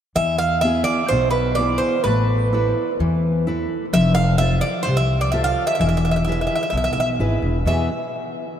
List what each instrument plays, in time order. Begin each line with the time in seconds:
0.15 upright bass E2, steel-string acoustic guitar E3, bouzouki E5
0.38 bouzouki F5
0.61 steel-string acoustic guitar B3 E4 G#4, bouzouki E5
0.84 bouzouki D5
1.08 upright bass B1, steel-string acoustic guitar B2, bouzouki C5
1.31 bouzouki B4
1.55 steel-string acoustic guitar B3 E4 G#4, bouzouki D5
1.78 bouzouki C5
2.04 upright bass A1, steel-string acoustic guitar A3, bouzouki B4
2.53 steel-string acoustic guitar E4 A4 B4
3.00 upright bass E2, steel-string acoustic guitar E3
3.47 steel-string acoustic guitar E4 A4 B4
3.93 upright bass F1, steel-string acoustic guitar F3, bouzouki E5
4.15 bouzouki F5
4.38 steel-string acoustic guitar F4 A4 C5, bouzouki E5
4.61 bouzouki D5
4.83 upright bass C2, bouzouki C5
4.88 steel-string acoustic guitar C3
4.97 bouzouki E5
5.21 bouzouki D5
5.32 steel-string acoustic guitar F4 A4 C5, bouzouki E5
5.44 bouzouki F5
5.67 bouzouki E5
5.75 bouzouki E5
5.79 upright bass E1, steel-string acoustic guitar E3, bouzouki E5
5.89 bouzouki E5
5.97 bouzouki E5
6.05 bouzouki E5
6.11 bouzouki E5
6.16 bouzouki E5
6.24 steel-string acoustic guitar E4 G#4, bouzouki E5
6.29 steel-string acoustic guitar B4, bouzouki E5
6.41 bouzouki E5
6.47 bouzouki E5
6.55 bouzouki E5
6.63 bouzouki E5
6.70 upright bass B1, steel-string acoustic guitar B2, bouzouki E5
6.77 bouzouki E5
6.84 bouzouki E5
6.93 upright bass B1, bouzouki E5
7.00 bouzouki E5
7.19 upright bass G#1, steel-string acoustic guitar E4 G#4 B4
7.42 upright bass E1
7.65 upright bass E2, steel-string acoustic guitar E2 B2 E3 B3 G#4 B4, bouzouki E5